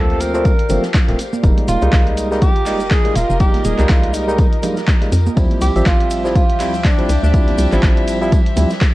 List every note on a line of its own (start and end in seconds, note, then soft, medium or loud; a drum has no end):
0.00 0.51 D2 medium
0.00 0.31 F3 loud
0.00 0.31 A3 medium
0.00 0.31 A#3 medium
0.00 0.32 C4 loud
0.00 1.40 F4 medium
0.00 1.42 G4 medium
0.00 2.76 G4 medium
0.00 0.22 A4 loud
0.00 1.40 D5 medium
0.00 2.11 F5 medium
0.10 closed hi-hat medium
0.20 0.95 A#4 loud
0.20 open hi-hat loud
0.20 tambourine medium
0.20 maracas loud
0.34 0.51 F3 loud
0.34 0.51 A3 medium
0.34 0.51 A#3 medium
0.34 0.51 C4 loud
0.34 closed hi-hat soft
0.34 maracas medium
0.45 kick loud
0.45 closed hi-hat medium
0.45 tambourine medium
0.45 maracas soft
0.59 closed hi-hat medium
0.69 0.79 G1 loud
0.69 0.82 F3 medium
0.69 0.82 A3 medium
0.69 0.82 A#3 medium
0.69 0.83 C4 loud
0.69 open hi-hat loud
0.69 tambourine medium
0.69 low conga medium
0.69 maracas loud
0.83 snare medium
0.83 closed hi-hat soft
0.83 maracas medium
0.94 kick loud
0.94 snare loud
0.94 clap loud
0.94 closed hi-hat medium
0.94 tambourine medium
0.94 maracas soft
1.08 1.15 D1 medium
1.08 1.18 F3 medium
1.08 1.18 A3 medium
1.08 1.18 A#3 medium
1.08 1.18 C4 loud
1.08 snare soft
1.08 closed hi-hat medium
1.19 open hi-hat loud
1.19 tambourine medium
1.19 maracas medium
1.33 high conga medium
1.33 maracas medium
1.43 1.53 F1 loud
1.43 1.79 G3 medium
1.43 1.79 G#3 medium
1.43 1.79 A#3 medium
1.43 1.79 D#4 loud
1.43 6.12 F4 medium
1.43 5.33 G4 medium
1.43 5.33 A#4 medium
1.43 5.33 D#5 medium
1.43 kick loud
1.43 closed hi-hat medium
1.43 tambourine medium
1.43 maracas soft
1.58 closed hi-hat medium
1.58 high conga medium
1.68 1.77 D#1 loud
1.68 2.14 F4 loud
1.68 open hi-hat loud
1.68 tambourine medium
1.68 maracas loud
1.73 5.37 D#5 medium
1.78 2.28 G3 loud
1.78 5.37 A#4 medium
1.78 maracas medium
1.82 1.89 C2 loud
1.82 2.28 G#3 medium
1.82 2.28 A#3 medium
1.82 2.28 D#4 loud
1.82 closed hi-hat soft
1.93 2.68 C2 medium
1.93 kick loud
1.93 snare loud
1.93 clap loud
1.93 closed hi-hat medium
1.93 tambourine loud
1.93 maracas soft
2.07 closed hi-hat medium
2.17 open hi-hat loud
2.17 tambourine medium
2.17 maracas loud
2.31 2.48 G3 loud
2.31 2.48 G#3 medium
2.31 2.48 A#3 medium
2.31 2.48 D#4 loud
2.31 snare soft
2.31 maracas medium
2.42 2.93 G4 loud
2.42 kick loud
2.42 closed hi-hat medium
2.42 tambourine medium
2.42 maracas soft
2.56 closed hi-hat medium
2.66 3.10 F1 loud
2.66 2.79 G3 medium
2.66 2.79 G#3 medium
2.66 2.79 A#3 medium
2.66 2.79 D#4 loud
2.66 snare soft
2.66 clap soft
2.66 open hi-hat medium
2.66 open hi-hat loud
2.66 maracas loud
2.80 closed hi-hat soft
2.80 maracas medium
2.91 3.17 G#4 loud
2.91 kick loud
2.91 snare loud
2.91 clap loud
2.91 closed hi-hat medium
2.91 tambourine medium
2.91 maracas soft
3.04 3.14 G3 loud
3.04 3.14 G#3 medium
3.04 3.15 A#3 medium
3.04 3.15 D#4 loud
3.04 closed hi-hat medium
3.16 3.25 D#1 loud
3.16 3.40 F4 loud
3.16 open hi-hat loud
3.16 tambourine medium
3.16 maracas medium
3.30 3.59 F1 medium
3.30 maracas medium
3.40 3.75 G3 medium
3.40 3.75 G#3 medium
3.40 3.76 A#3 medium
3.40 3.76 D#4 loud
3.40 3.66 G4 loud
3.40 kick loud
3.40 closed hi-hat medium
3.40 tambourine medium
3.40 maracas soft
3.54 snare soft
3.54 closed hi-hat soft
3.54 high conga medium
3.65 3.74 D#1 loud
3.65 3.91 G#4 loud
3.65 open hi-hat loud
3.65 tambourine medium
3.65 high conga medium
3.65 maracas loud
3.78 3.86 C2 medium
3.78 4.24 G3 medium
3.78 4.25 G#3 medium
3.78 4.25 A#3 medium
3.78 4.25 D#4 loud
3.78 clap soft
3.78 closed hi-hat soft
3.78 maracas medium
3.89 4.45 C2 medium
3.89 4.16 F4 medium
3.89 kick loud
3.89 snare loud
3.89 clap loud
3.89 closed hi-hat medium
3.89 tambourine medium
3.89 maracas soft
4.03 closed hi-hat medium
4.14 4.63 D#4 medium
4.14 open hi-hat loud
4.14 tambourine medium
4.14 maracas loud
4.27 4.44 G3 loud
4.27 4.44 G#3 medium
4.27 4.45 A#3 medium
4.27 4.45 D#4 loud
4.27 closed hi-hat soft
4.27 maracas medium
4.38 kick loud
4.38 open hi-hat medium
4.38 tambourine medium
4.38 maracas soft
4.53 closed hi-hat medium
4.62 4.75 G3 medium
4.62 4.76 G#3 medium
4.62 4.76 A#3 medium
4.62 4.76 D#4 loud
4.62 open hi-hat loud
4.62 tambourine medium
4.62 low conga medium
4.62 maracas loud
4.77 snare medium
4.77 closed hi-hat soft
4.77 maracas medium
4.88 kick loud
4.88 snare loud
4.88 clap loud
4.88 closed hi-hat medium
4.88 tambourine medium
4.88 maracas soft
5.01 5.11 G3 medium
5.01 5.11 G#3 medium
5.01 5.11 A#3 medium
5.01 5.11 D#4 loud
5.01 snare soft
5.01 closed hi-hat soft
5.12 5.29 F2 loud
5.12 open hi-hat loud
5.12 tambourine medium
5.12 maracas medium
5.26 high conga medium
5.26 maracas medium
5.36 5.46 D2 loud
5.36 5.72 F3 medium
5.36 8.94 F3 medium
5.36 5.72 G3 medium
5.36 8.94 G3 medium
5.36 5.72 C4 medium
5.36 5.72 E4 medium
5.36 8.94 G4 medium
5.36 8.94 C5 medium
5.36 8.94 E5 medium
5.36 kick loud
5.36 closed hi-hat medium
5.36 ride medium
5.36 tambourine medium
5.36 maracas soft
5.51 closed hi-hat medium
5.51 high conga medium
5.61 5.70 C2 loud
5.61 5.84 G4 loud
5.61 open hi-hat loud
5.61 ride medium
5.61 tambourine medium
5.61 maracas loud
5.66 8.94 E5 loud
5.75 5.82 A1 loud
5.75 6.21 F3 loud
5.75 6.21 G3 medium
5.75 6.22 C4 medium
5.75 6.22 E5 loud
5.75 closed hi-hat soft
5.75 maracas medium
5.86 6.61 A1 medium
5.86 6.32 F4 loud
5.86 kick loud
5.86 snare loud
5.86 clap loud
5.86 closed hi-hat medium
5.86 ride medium
5.86 tambourine medium
5.86 maracas soft
6.00 closed hi-hat medium
6.10 open hi-hat loud
6.10 ride medium
6.10 tambourine medium
6.10 maracas loud
6.24 6.41 F3 loud
6.24 6.41 G3 medium
6.24 6.41 C4 medium
6.24 6.42 E4 loud
6.24 snare medium
6.24 maracas medium
6.35 6.86 F4 loud
6.35 kick loud
6.35 closed hi-hat medium
6.35 ride medium
6.35 tambourine medium
6.35 maracas soft
6.49 closed hi-hat medium
6.59 7.03 D2 loud
6.59 6.72 F3 medium
6.59 6.72 G3 medium
6.59 6.73 C4 medium
6.59 6.73 E4 loud
6.59 snare soft
6.59 clap soft
6.59 open hi-hat loud
6.59 open hi-hat medium
6.59 ride medium
6.59 maracas medium
6.74 closed hi-hat soft
6.74 maracas soft
6.84 7.23 D4 loud
6.84 kick loud
6.84 snare loud
6.84 clap loud
6.84 closed hi-hat medium
6.84 ride medium
6.84 tambourine medium
6.84 maracas soft
6.98 7.08 F3 medium
6.98 7.08 G3 medium
6.98 7.08 C4 medium
6.98 7.08 E4 loud
6.98 closed hi-hat soft
7.09 7.18 C2 loud
7.09 open hi-hat loud
7.09 ride medium
7.09 tambourine medium
7.09 maracas medium
7.23 7.52 D2 medium
7.23 8.18 D4 medium
7.23 maracas medium
7.33 7.69 F3 medium
7.33 7.69 G3 medium
7.33 7.69 C4 medium
7.33 7.69 E4 medium
7.33 kick loud
7.33 closed hi-hat medium
7.33 ride medium
7.33 tambourine medium
7.33 maracas soft
7.48 snare soft
7.48 closed hi-hat medium
7.48 high conga medium
7.58 7.67 C2 loud
7.58 open hi-hat loud
7.58 ride medium
7.58 tambourine medium
7.58 maracas medium
7.72 7.79 A1 loud
7.72 8.18 F3 loud
7.72 8.18 G3 medium
7.72 8.18 C4 medium
7.72 8.18 E4 loud
7.72 clap soft
7.72 closed hi-hat soft
7.72 maracas soft
7.83 8.38 A1 medium
7.83 kick loud
7.83 snare loud
7.83 clap loud
7.83 closed hi-hat medium
7.83 ride medium
7.83 tambourine medium
7.83 maracas soft
7.97 closed hi-hat medium
8.07 open hi-hat loud
8.07 ride medium
8.07 tambourine medium
8.07 maracas medium
8.21 8.38 F3 loud
8.21 8.38 G3 medium
8.21 8.38 C4 medium
8.21 8.38 E4 loud
8.21 closed hi-hat soft
8.21 maracas soft
8.32 kick loud
8.32 closed hi-hat medium
8.32 ride medium
8.32 tambourine medium
8.32 maracas soft
8.46 closed hi-hat medium
8.56 8.66 D2 loud
8.56 8.69 F3 medium
8.56 8.69 G3 medium
8.56 8.69 C4 medium
8.56 8.69 E4 loud
8.56 open hi-hat loud
8.56 ride medium
8.56 tambourine medium
8.56 low conga medium
8.56 maracas medium
8.70 snare medium
8.70 closed hi-hat soft
8.70 maracas soft
8.81 kick loud
8.81 snare loud
8.81 clap loud
8.81 closed hi-hat medium
8.81 ride medium
8.81 tambourine medium
8.81 maracas soft